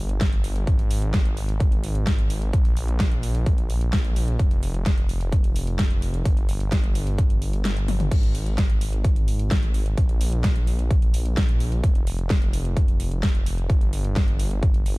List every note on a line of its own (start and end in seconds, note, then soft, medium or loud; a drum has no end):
0.00 0.65 G1 medium
0.09 closed hi-hat soft
0.21 kick loud
0.21 snare loud
0.21 closed hi-hat medium
0.33 closed hi-hat soft
0.44 open hi-hat loud
0.56 closed hi-hat soft
0.67 2.51 G#1 medium
0.67 kick loud
0.67 closed hi-hat medium
0.79 closed hi-hat soft
0.91 open hi-hat loud
1.02 closed hi-hat soft
1.14 kick loud
1.14 snare loud
1.14 closed hi-hat medium
1.25 closed hi-hat soft
1.37 open hi-hat medium
1.49 closed hi-hat soft
1.60 kick loud
1.60 closed hi-hat medium
1.72 closed hi-hat soft
1.84 open hi-hat loud
1.95 closed hi-hat soft
2.07 kick loud
2.07 snare loud
2.07 closed hi-hat medium
2.19 closed hi-hat soft
2.30 open hi-hat medium
2.42 closed hi-hat soft
2.53 4.37 A#1 medium
2.53 kick loud
2.53 closed hi-hat medium
2.65 closed hi-hat soft
2.77 open hi-hat loud
2.88 closed hi-hat soft
3.00 kick loud
3.00 snare loud
3.00 closed hi-hat medium
3.12 closed hi-hat soft
3.23 open hi-hat medium
3.35 closed hi-hat soft
3.46 kick loud
3.46 closed hi-hat medium
3.58 closed hi-hat soft
3.70 open hi-hat loud
3.81 closed hi-hat soft
3.93 kick loud
3.93 snare loud
3.93 closed hi-hat medium
4.05 closed hi-hat soft
4.16 open hi-hat medium
4.28 closed hi-hat soft
4.39 6.23 F1 medium
4.39 kick loud
4.39 closed hi-hat medium
4.51 closed hi-hat soft
4.63 open hi-hat loud
4.74 closed hi-hat soft
4.86 kick loud
4.86 snare loud
4.86 closed hi-hat medium
4.98 closed hi-hat soft
5.09 open hi-hat medium
5.21 closed hi-hat soft
5.32 kick loud
5.32 closed hi-hat medium
5.44 closed hi-hat soft
5.56 open hi-hat loud
5.67 closed hi-hat soft
5.79 kick loud
5.79 snare loud
5.79 closed hi-hat medium
5.91 closed hi-hat soft
6.02 open hi-hat medium
6.14 closed hi-hat soft
6.25 8.09 G1 medium
6.25 kick loud
6.25 closed hi-hat medium
6.37 closed hi-hat soft
6.49 open hi-hat loud
6.60 closed hi-hat soft
6.72 kick loud
6.72 snare loud
6.72 closed hi-hat medium
6.84 closed hi-hat soft
6.95 open hi-hat medium
7.07 closed hi-hat soft
7.18 kick loud
7.18 closed hi-hat medium
7.30 closed hi-hat soft
7.42 open hi-hat loud
7.53 closed hi-hat soft
7.65 snare loud
7.65 closed hi-hat medium
7.77 closed hi-hat soft
7.88 open hi-hat medium
7.88 high tom medium
8.00 closed hi-hat soft
8.00 mid tom medium
8.11 9.95 G#1 medium
8.11 kick loud
8.11 closed hi-hat medium
8.11 crash medium
8.23 closed hi-hat soft
8.35 open hi-hat loud
8.46 closed hi-hat soft
8.58 kick loud
8.58 snare loud
8.58 closed hi-hat medium
8.70 closed hi-hat soft
8.81 open hi-hat medium
8.93 closed hi-hat soft
9.04 kick loud
9.04 closed hi-hat medium
9.16 closed hi-hat soft
9.28 open hi-hat loud
9.39 closed hi-hat soft
9.51 kick loud
9.51 snare loud
9.51 closed hi-hat medium
9.63 closed hi-hat soft
9.74 open hi-hat loud
9.86 closed hi-hat soft
9.98 11.81 A#1 medium
9.98 kick loud
9.98 closed hi-hat medium
10.09 closed hi-hat soft
10.21 open hi-hat loud
10.32 closed hi-hat soft
10.44 kick loud
10.44 snare loud
10.44 closed hi-hat medium
10.56 closed hi-hat soft
10.67 open hi-hat medium
10.79 closed hi-hat soft
10.91 kick loud
10.91 closed hi-hat medium
11.02 closed hi-hat soft
11.14 open hi-hat loud
11.26 closed hi-hat soft
11.37 kick loud
11.37 snare loud
11.37 closed hi-hat medium
11.49 closed hi-hat soft
11.60 open hi-hat loud
11.72 closed hi-hat soft
11.84 13.67 F1 medium
11.84 kick loud
11.84 closed hi-hat medium
11.95 closed hi-hat soft
12.07 open hi-hat loud
12.19 closed hi-hat soft
12.30 kick loud
12.30 snare loud
12.30 closed hi-hat medium
12.42 closed hi-hat soft
12.53 open hi-hat loud
12.65 closed hi-hat soft
12.77 kick loud
12.77 closed hi-hat medium
12.88 closed hi-hat soft
13.00 open hi-hat loud
13.12 closed hi-hat soft
13.23 kick loud
13.23 snare loud
13.23 closed hi-hat medium
13.35 closed hi-hat soft
13.46 open hi-hat loud
13.58 closed hi-hat soft
13.70 14.98 G1 medium
13.70 kick loud
13.70 closed hi-hat medium
13.81 closed hi-hat soft
13.93 open hi-hat loud
14.05 closed hi-hat soft
14.16 kick loud
14.16 snare loud
14.16 closed hi-hat medium
14.28 closed hi-hat soft
14.39 open hi-hat loud
14.51 closed hi-hat soft
14.63 kick loud
14.63 closed hi-hat medium
14.74 closed hi-hat soft
14.86 open hi-hat loud